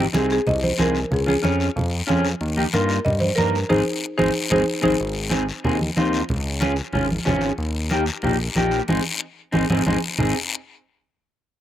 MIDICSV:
0, 0, Header, 1, 5, 480
1, 0, Start_track
1, 0, Key_signature, -4, "major"
1, 0, Tempo, 323625
1, 1657, Time_signature, 4, 2, 24, 8
1, 17211, End_track
2, 0, Start_track
2, 0, Title_t, "Marimba"
2, 0, Program_c, 0, 12
2, 232, Note_on_c, 0, 68, 79
2, 337, Note_off_c, 0, 68, 0
2, 479, Note_on_c, 0, 68, 91
2, 702, Note_on_c, 0, 75, 98
2, 715, Note_off_c, 0, 68, 0
2, 923, Note_off_c, 0, 75, 0
2, 940, Note_on_c, 0, 72, 89
2, 1162, Note_off_c, 0, 72, 0
2, 1197, Note_on_c, 0, 70, 82
2, 1634, Note_off_c, 0, 70, 0
2, 1683, Note_on_c, 0, 68, 85
2, 1785, Note_off_c, 0, 68, 0
2, 1911, Note_on_c, 0, 68, 84
2, 2574, Note_off_c, 0, 68, 0
2, 4064, Note_on_c, 0, 70, 90
2, 4519, Note_on_c, 0, 75, 98
2, 4554, Note_off_c, 0, 70, 0
2, 4631, Note_off_c, 0, 75, 0
2, 4747, Note_on_c, 0, 72, 93
2, 4862, Note_off_c, 0, 72, 0
2, 4975, Note_on_c, 0, 70, 94
2, 5441, Note_off_c, 0, 70, 0
2, 5478, Note_on_c, 0, 68, 94
2, 5479, Note_on_c, 0, 63, 95
2, 5483, Note_on_c, 0, 72, 99
2, 5639, Note_off_c, 0, 63, 0
2, 5639, Note_off_c, 0, 68, 0
2, 5642, Note_off_c, 0, 72, 0
2, 6195, Note_on_c, 0, 68, 88
2, 6195, Note_on_c, 0, 72, 97
2, 6197, Note_on_c, 0, 63, 94
2, 6357, Note_off_c, 0, 68, 0
2, 6357, Note_off_c, 0, 72, 0
2, 6358, Note_off_c, 0, 63, 0
2, 6695, Note_on_c, 0, 63, 94
2, 6698, Note_on_c, 0, 68, 84
2, 6700, Note_on_c, 0, 72, 96
2, 6849, Note_off_c, 0, 63, 0
2, 6851, Note_off_c, 0, 68, 0
2, 6852, Note_off_c, 0, 72, 0
2, 7169, Note_on_c, 0, 63, 94
2, 7173, Note_on_c, 0, 72, 96
2, 7176, Note_on_c, 0, 68, 91
2, 7325, Note_off_c, 0, 63, 0
2, 7328, Note_off_c, 0, 72, 0
2, 7330, Note_off_c, 0, 68, 0
2, 17211, End_track
3, 0, Start_track
3, 0, Title_t, "Clean electric guitar"
3, 0, Program_c, 1, 27
3, 193, Note_on_c, 1, 60, 70
3, 197, Note_on_c, 1, 63, 63
3, 208, Note_on_c, 1, 68, 65
3, 540, Note_off_c, 1, 60, 0
3, 544, Note_off_c, 1, 63, 0
3, 546, Note_off_c, 1, 68, 0
3, 1152, Note_on_c, 1, 60, 64
3, 1162, Note_on_c, 1, 63, 64
3, 1171, Note_on_c, 1, 68, 83
3, 1417, Note_off_c, 1, 60, 0
3, 1418, Note_off_c, 1, 63, 0
3, 1426, Note_off_c, 1, 68, 0
3, 1872, Note_on_c, 1, 61, 62
3, 1880, Note_on_c, 1, 65, 60
3, 1895, Note_on_c, 1, 68, 67
3, 1968, Note_off_c, 1, 61, 0
3, 1974, Note_off_c, 1, 65, 0
3, 1977, Note_off_c, 1, 68, 0
3, 2111, Note_on_c, 1, 61, 76
3, 2117, Note_on_c, 1, 65, 62
3, 2129, Note_on_c, 1, 68, 60
3, 2462, Note_off_c, 1, 61, 0
3, 2462, Note_off_c, 1, 65, 0
3, 2463, Note_off_c, 1, 68, 0
3, 3071, Note_on_c, 1, 61, 95
3, 3076, Note_on_c, 1, 65, 70
3, 3087, Note_on_c, 1, 68, 98
3, 3336, Note_off_c, 1, 65, 0
3, 3337, Note_off_c, 1, 61, 0
3, 3344, Note_off_c, 1, 68, 0
3, 3810, Note_on_c, 1, 58, 85
3, 3818, Note_on_c, 1, 63, 78
3, 3821, Note_on_c, 1, 67, 87
3, 3897, Note_off_c, 1, 58, 0
3, 3900, Note_off_c, 1, 67, 0
3, 3902, Note_off_c, 1, 63, 0
3, 4054, Note_on_c, 1, 58, 79
3, 4061, Note_on_c, 1, 63, 70
3, 4069, Note_on_c, 1, 65, 84
3, 4391, Note_off_c, 1, 58, 0
3, 4395, Note_off_c, 1, 63, 0
3, 4398, Note_off_c, 1, 65, 0
3, 5003, Note_on_c, 1, 58, 68
3, 5015, Note_on_c, 1, 70, 81
3, 5019, Note_on_c, 1, 63, 63
3, 5263, Note_off_c, 1, 58, 0
3, 5266, Note_off_c, 1, 63, 0
3, 5267, Note_off_c, 1, 70, 0
3, 5481, Note_on_c, 1, 60, 95
3, 5482, Note_on_c, 1, 63, 90
3, 5491, Note_on_c, 1, 68, 90
3, 5640, Note_off_c, 1, 63, 0
3, 5641, Note_off_c, 1, 68, 0
3, 5643, Note_off_c, 1, 60, 0
3, 6202, Note_on_c, 1, 68, 93
3, 6206, Note_on_c, 1, 63, 95
3, 6211, Note_on_c, 1, 60, 82
3, 6362, Note_off_c, 1, 60, 0
3, 6363, Note_off_c, 1, 63, 0
3, 6364, Note_off_c, 1, 68, 0
3, 6675, Note_on_c, 1, 60, 95
3, 6685, Note_on_c, 1, 63, 89
3, 6686, Note_on_c, 1, 68, 96
3, 6839, Note_off_c, 1, 60, 0
3, 6840, Note_off_c, 1, 63, 0
3, 6844, Note_off_c, 1, 68, 0
3, 7142, Note_on_c, 1, 60, 97
3, 7147, Note_on_c, 1, 63, 77
3, 7150, Note_on_c, 1, 68, 99
3, 7310, Note_off_c, 1, 63, 0
3, 7311, Note_off_c, 1, 60, 0
3, 7314, Note_off_c, 1, 68, 0
3, 7857, Note_on_c, 1, 60, 93
3, 7865, Note_on_c, 1, 63, 60
3, 7867, Note_on_c, 1, 68, 93
3, 8046, Note_off_c, 1, 60, 0
3, 8046, Note_off_c, 1, 63, 0
3, 8050, Note_off_c, 1, 68, 0
3, 8368, Note_on_c, 1, 60, 81
3, 8372, Note_on_c, 1, 63, 75
3, 8382, Note_on_c, 1, 68, 74
3, 8541, Note_off_c, 1, 60, 0
3, 8544, Note_off_c, 1, 63, 0
3, 8545, Note_off_c, 1, 68, 0
3, 8847, Note_on_c, 1, 60, 86
3, 8856, Note_on_c, 1, 63, 74
3, 8869, Note_on_c, 1, 65, 82
3, 9188, Note_off_c, 1, 60, 0
3, 9194, Note_off_c, 1, 63, 0
3, 9196, Note_off_c, 1, 65, 0
3, 9793, Note_on_c, 1, 61, 90
3, 9800, Note_on_c, 1, 65, 78
3, 9811, Note_on_c, 1, 68, 91
3, 9973, Note_off_c, 1, 61, 0
3, 9978, Note_off_c, 1, 65, 0
3, 9980, Note_off_c, 1, 68, 0
3, 10282, Note_on_c, 1, 61, 80
3, 10292, Note_on_c, 1, 65, 68
3, 10294, Note_on_c, 1, 68, 73
3, 10458, Note_off_c, 1, 61, 0
3, 10461, Note_off_c, 1, 68, 0
3, 10464, Note_off_c, 1, 65, 0
3, 10756, Note_on_c, 1, 61, 89
3, 10759, Note_on_c, 1, 65, 75
3, 10770, Note_on_c, 1, 68, 95
3, 11103, Note_off_c, 1, 61, 0
3, 11103, Note_off_c, 1, 65, 0
3, 11110, Note_off_c, 1, 68, 0
3, 11728, Note_on_c, 1, 58, 82
3, 11737, Note_on_c, 1, 63, 85
3, 11739, Note_on_c, 1, 67, 95
3, 11902, Note_off_c, 1, 58, 0
3, 11903, Note_off_c, 1, 63, 0
3, 11907, Note_off_c, 1, 67, 0
3, 12207, Note_on_c, 1, 58, 77
3, 12217, Note_on_c, 1, 63, 75
3, 12219, Note_on_c, 1, 67, 77
3, 12382, Note_off_c, 1, 58, 0
3, 12385, Note_off_c, 1, 67, 0
3, 12386, Note_off_c, 1, 63, 0
3, 12703, Note_on_c, 1, 58, 86
3, 12706, Note_on_c, 1, 63, 73
3, 12711, Note_on_c, 1, 67, 96
3, 13036, Note_off_c, 1, 63, 0
3, 13037, Note_off_c, 1, 58, 0
3, 13040, Note_off_c, 1, 67, 0
3, 13182, Note_on_c, 1, 63, 104
3, 13187, Note_on_c, 1, 68, 90
3, 13190, Note_on_c, 1, 60, 91
3, 13333, Note_off_c, 1, 68, 0
3, 13335, Note_off_c, 1, 63, 0
3, 13339, Note_off_c, 1, 60, 0
3, 14125, Note_on_c, 1, 60, 95
3, 14131, Note_on_c, 1, 63, 96
3, 14135, Note_on_c, 1, 68, 81
3, 14284, Note_off_c, 1, 60, 0
3, 14287, Note_off_c, 1, 63, 0
3, 14287, Note_off_c, 1, 68, 0
3, 14385, Note_on_c, 1, 63, 100
3, 14391, Note_on_c, 1, 60, 107
3, 14397, Note_on_c, 1, 68, 86
3, 14536, Note_off_c, 1, 63, 0
3, 14539, Note_off_c, 1, 68, 0
3, 14541, Note_off_c, 1, 60, 0
3, 14626, Note_on_c, 1, 60, 102
3, 14633, Note_on_c, 1, 68, 93
3, 14635, Note_on_c, 1, 63, 92
3, 14777, Note_off_c, 1, 60, 0
3, 14778, Note_off_c, 1, 68, 0
3, 14782, Note_off_c, 1, 63, 0
3, 15106, Note_on_c, 1, 63, 74
3, 15115, Note_on_c, 1, 60, 80
3, 15118, Note_on_c, 1, 68, 87
3, 15326, Note_off_c, 1, 63, 0
3, 15329, Note_off_c, 1, 68, 0
3, 15330, Note_off_c, 1, 60, 0
3, 17211, End_track
4, 0, Start_track
4, 0, Title_t, "Analog synth bass"
4, 0, Program_c, 2, 38
4, 204, Note_on_c, 2, 36, 88
4, 593, Note_off_c, 2, 36, 0
4, 691, Note_on_c, 2, 36, 112
4, 1077, Note_off_c, 2, 36, 0
4, 1172, Note_on_c, 2, 36, 97
4, 1558, Note_off_c, 2, 36, 0
4, 1647, Note_on_c, 2, 37, 102
4, 2035, Note_off_c, 2, 37, 0
4, 2129, Note_on_c, 2, 41, 97
4, 2516, Note_off_c, 2, 41, 0
4, 2612, Note_on_c, 2, 41, 101
4, 2997, Note_off_c, 2, 41, 0
4, 3101, Note_on_c, 2, 41, 91
4, 3483, Note_off_c, 2, 41, 0
4, 3572, Note_on_c, 2, 39, 93
4, 3958, Note_off_c, 2, 39, 0
4, 4062, Note_on_c, 2, 43, 95
4, 4443, Note_off_c, 2, 43, 0
4, 4531, Note_on_c, 2, 43, 104
4, 4917, Note_off_c, 2, 43, 0
4, 5019, Note_on_c, 2, 43, 92
4, 5402, Note_off_c, 2, 43, 0
4, 5493, Note_on_c, 2, 32, 106
4, 5673, Note_off_c, 2, 32, 0
4, 6215, Note_on_c, 2, 32, 97
4, 6394, Note_off_c, 2, 32, 0
4, 6692, Note_on_c, 2, 32, 93
4, 6873, Note_off_c, 2, 32, 0
4, 7171, Note_on_c, 2, 32, 105
4, 7352, Note_off_c, 2, 32, 0
4, 7417, Note_on_c, 2, 32, 103
4, 8185, Note_off_c, 2, 32, 0
4, 8376, Note_on_c, 2, 39, 98
4, 8761, Note_off_c, 2, 39, 0
4, 8858, Note_on_c, 2, 39, 88
4, 9242, Note_off_c, 2, 39, 0
4, 9339, Note_on_c, 2, 37, 101
4, 10107, Note_off_c, 2, 37, 0
4, 10274, Note_on_c, 2, 32, 101
4, 10668, Note_off_c, 2, 32, 0
4, 10771, Note_on_c, 2, 32, 91
4, 11158, Note_off_c, 2, 32, 0
4, 11244, Note_on_c, 2, 39, 95
4, 12017, Note_off_c, 2, 39, 0
4, 12207, Note_on_c, 2, 34, 101
4, 12596, Note_off_c, 2, 34, 0
4, 12687, Note_on_c, 2, 34, 91
4, 13075, Note_off_c, 2, 34, 0
4, 13179, Note_on_c, 2, 32, 95
4, 13357, Note_off_c, 2, 32, 0
4, 14150, Note_on_c, 2, 32, 97
4, 14323, Note_off_c, 2, 32, 0
4, 14384, Note_on_c, 2, 32, 100
4, 14560, Note_off_c, 2, 32, 0
4, 14621, Note_on_c, 2, 32, 98
4, 14798, Note_off_c, 2, 32, 0
4, 15111, Note_on_c, 2, 32, 102
4, 15328, Note_off_c, 2, 32, 0
4, 17211, End_track
5, 0, Start_track
5, 0, Title_t, "Drums"
5, 215, Note_on_c, 9, 63, 94
5, 219, Note_on_c, 9, 73, 68
5, 363, Note_off_c, 9, 63, 0
5, 367, Note_off_c, 9, 73, 0
5, 446, Note_on_c, 9, 73, 72
5, 595, Note_off_c, 9, 73, 0
5, 692, Note_on_c, 9, 74, 74
5, 706, Note_on_c, 9, 63, 33
5, 706, Note_on_c, 9, 64, 78
5, 840, Note_off_c, 9, 74, 0
5, 854, Note_off_c, 9, 63, 0
5, 854, Note_off_c, 9, 64, 0
5, 944, Note_on_c, 9, 63, 70
5, 1093, Note_off_c, 9, 63, 0
5, 1163, Note_on_c, 9, 73, 74
5, 1179, Note_on_c, 9, 63, 94
5, 1312, Note_off_c, 9, 73, 0
5, 1328, Note_off_c, 9, 63, 0
5, 1404, Note_on_c, 9, 73, 65
5, 1552, Note_off_c, 9, 73, 0
5, 1656, Note_on_c, 9, 74, 73
5, 1658, Note_on_c, 9, 63, 34
5, 1658, Note_on_c, 9, 64, 71
5, 1804, Note_off_c, 9, 74, 0
5, 1806, Note_off_c, 9, 63, 0
5, 1806, Note_off_c, 9, 64, 0
5, 1898, Note_on_c, 9, 63, 61
5, 2047, Note_off_c, 9, 63, 0
5, 2135, Note_on_c, 9, 73, 66
5, 2141, Note_on_c, 9, 63, 91
5, 2284, Note_off_c, 9, 73, 0
5, 2289, Note_off_c, 9, 63, 0
5, 2374, Note_on_c, 9, 73, 72
5, 2522, Note_off_c, 9, 73, 0
5, 2621, Note_on_c, 9, 74, 68
5, 2638, Note_on_c, 9, 63, 34
5, 2638, Note_on_c, 9, 64, 84
5, 2770, Note_off_c, 9, 74, 0
5, 2786, Note_off_c, 9, 63, 0
5, 2786, Note_off_c, 9, 64, 0
5, 3094, Note_on_c, 9, 73, 67
5, 3109, Note_on_c, 9, 63, 88
5, 3243, Note_off_c, 9, 73, 0
5, 3257, Note_off_c, 9, 63, 0
5, 3332, Note_on_c, 9, 73, 74
5, 3480, Note_off_c, 9, 73, 0
5, 3570, Note_on_c, 9, 74, 73
5, 3590, Note_on_c, 9, 63, 32
5, 3718, Note_off_c, 9, 74, 0
5, 3738, Note_off_c, 9, 63, 0
5, 3818, Note_on_c, 9, 63, 64
5, 3967, Note_off_c, 9, 63, 0
5, 4044, Note_on_c, 9, 73, 70
5, 4058, Note_on_c, 9, 63, 90
5, 4193, Note_off_c, 9, 73, 0
5, 4206, Note_off_c, 9, 63, 0
5, 4285, Note_on_c, 9, 73, 73
5, 4434, Note_off_c, 9, 73, 0
5, 4536, Note_on_c, 9, 74, 69
5, 4541, Note_on_c, 9, 63, 33
5, 4541, Note_on_c, 9, 64, 86
5, 4684, Note_off_c, 9, 74, 0
5, 4689, Note_off_c, 9, 63, 0
5, 4689, Note_off_c, 9, 64, 0
5, 4768, Note_on_c, 9, 63, 70
5, 4917, Note_off_c, 9, 63, 0
5, 5012, Note_on_c, 9, 63, 89
5, 5021, Note_on_c, 9, 73, 75
5, 5160, Note_off_c, 9, 63, 0
5, 5169, Note_off_c, 9, 73, 0
5, 5270, Note_on_c, 9, 73, 75
5, 5418, Note_off_c, 9, 73, 0
5, 5487, Note_on_c, 9, 74, 102
5, 5496, Note_on_c, 9, 63, 89
5, 5635, Note_off_c, 9, 74, 0
5, 5644, Note_off_c, 9, 63, 0
5, 6213, Note_on_c, 9, 63, 99
5, 6218, Note_on_c, 9, 74, 101
5, 6362, Note_off_c, 9, 63, 0
5, 6366, Note_off_c, 9, 74, 0
5, 6692, Note_on_c, 9, 74, 86
5, 6700, Note_on_c, 9, 63, 98
5, 6841, Note_off_c, 9, 74, 0
5, 6848, Note_off_c, 9, 63, 0
5, 7162, Note_on_c, 9, 74, 96
5, 7167, Note_on_c, 9, 63, 100
5, 7310, Note_off_c, 9, 74, 0
5, 7315, Note_off_c, 9, 63, 0
5, 7420, Note_on_c, 9, 74, 75
5, 7569, Note_off_c, 9, 74, 0
5, 7881, Note_on_c, 9, 63, 93
5, 7895, Note_on_c, 9, 73, 73
5, 8029, Note_off_c, 9, 63, 0
5, 8043, Note_off_c, 9, 73, 0
5, 8135, Note_on_c, 9, 73, 70
5, 8284, Note_off_c, 9, 73, 0
5, 8373, Note_on_c, 9, 74, 74
5, 8375, Note_on_c, 9, 63, 34
5, 8375, Note_on_c, 9, 64, 83
5, 8522, Note_off_c, 9, 74, 0
5, 8523, Note_off_c, 9, 63, 0
5, 8523, Note_off_c, 9, 64, 0
5, 8621, Note_on_c, 9, 63, 72
5, 8769, Note_off_c, 9, 63, 0
5, 8854, Note_on_c, 9, 63, 88
5, 8857, Note_on_c, 9, 73, 73
5, 9003, Note_off_c, 9, 63, 0
5, 9005, Note_off_c, 9, 73, 0
5, 9092, Note_on_c, 9, 73, 68
5, 9240, Note_off_c, 9, 73, 0
5, 9326, Note_on_c, 9, 74, 73
5, 9342, Note_on_c, 9, 63, 31
5, 9342, Note_on_c, 9, 64, 68
5, 9474, Note_off_c, 9, 74, 0
5, 9491, Note_off_c, 9, 63, 0
5, 9491, Note_off_c, 9, 64, 0
5, 9799, Note_on_c, 9, 73, 68
5, 9817, Note_on_c, 9, 63, 91
5, 9947, Note_off_c, 9, 73, 0
5, 9965, Note_off_c, 9, 63, 0
5, 10030, Note_on_c, 9, 73, 73
5, 10178, Note_off_c, 9, 73, 0
5, 10272, Note_on_c, 9, 74, 71
5, 10313, Note_on_c, 9, 63, 36
5, 10313, Note_on_c, 9, 64, 73
5, 10421, Note_off_c, 9, 74, 0
5, 10461, Note_off_c, 9, 63, 0
5, 10461, Note_off_c, 9, 64, 0
5, 10545, Note_on_c, 9, 63, 75
5, 10694, Note_off_c, 9, 63, 0
5, 10753, Note_on_c, 9, 73, 74
5, 10788, Note_on_c, 9, 63, 85
5, 10788, Note_on_c, 9, 64, 77
5, 10902, Note_off_c, 9, 73, 0
5, 10936, Note_off_c, 9, 63, 0
5, 10936, Note_off_c, 9, 64, 0
5, 10990, Note_on_c, 9, 73, 71
5, 11139, Note_off_c, 9, 73, 0
5, 11243, Note_on_c, 9, 74, 71
5, 11272, Note_on_c, 9, 63, 30
5, 11391, Note_off_c, 9, 74, 0
5, 11420, Note_off_c, 9, 63, 0
5, 11715, Note_on_c, 9, 73, 68
5, 11732, Note_on_c, 9, 63, 86
5, 11863, Note_off_c, 9, 73, 0
5, 11880, Note_off_c, 9, 63, 0
5, 11957, Note_on_c, 9, 73, 74
5, 12105, Note_off_c, 9, 73, 0
5, 12190, Note_on_c, 9, 74, 72
5, 12218, Note_on_c, 9, 63, 30
5, 12218, Note_on_c, 9, 64, 76
5, 12338, Note_off_c, 9, 74, 0
5, 12366, Note_off_c, 9, 63, 0
5, 12366, Note_off_c, 9, 64, 0
5, 12692, Note_on_c, 9, 73, 75
5, 12703, Note_on_c, 9, 63, 95
5, 12840, Note_off_c, 9, 73, 0
5, 12852, Note_off_c, 9, 63, 0
5, 12923, Note_on_c, 9, 73, 74
5, 13072, Note_off_c, 9, 73, 0
5, 13171, Note_on_c, 9, 74, 106
5, 13181, Note_on_c, 9, 63, 93
5, 13320, Note_off_c, 9, 74, 0
5, 13329, Note_off_c, 9, 63, 0
5, 14127, Note_on_c, 9, 74, 98
5, 14143, Note_on_c, 9, 63, 97
5, 14276, Note_off_c, 9, 74, 0
5, 14291, Note_off_c, 9, 63, 0
5, 14382, Note_on_c, 9, 74, 100
5, 14391, Note_on_c, 9, 63, 92
5, 14531, Note_off_c, 9, 74, 0
5, 14539, Note_off_c, 9, 63, 0
5, 14621, Note_on_c, 9, 74, 106
5, 14638, Note_on_c, 9, 63, 108
5, 14770, Note_off_c, 9, 74, 0
5, 14786, Note_off_c, 9, 63, 0
5, 15095, Note_on_c, 9, 74, 104
5, 15107, Note_on_c, 9, 64, 91
5, 15244, Note_off_c, 9, 74, 0
5, 15255, Note_off_c, 9, 64, 0
5, 17211, End_track
0, 0, End_of_file